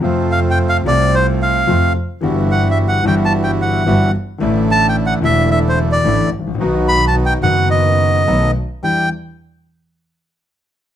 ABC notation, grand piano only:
X:1
M:4/4
L:1/16
Q:1/4=109
K:Em
V:1 name="Grand piano" clef=bass
[=F,,C,=F,A,=F]6 [C,,C,F,A,F]6 [F,,C,F,A,F]2 z2 | [G,,,G,,E,G,B,F]6 [G,,,G,,E,G,B,F]6 [G,,,G,,E,G,B,F]2 z2 | [A,,,A,,D,E,A,E]6 [E,,,E,,D,E,A,E]6 [A,,,A,,D,E,A,E]2 z/2 ^G,,,/2 A,,,/2 ^A,,,/2 | [B,,,B,,^D,F,B,F]6 [F,,,F,,D,F,B,F]6 [B,,,B,,D,A,B,F]2 z2 |
[E,,G,DE]2 z12 z2 |]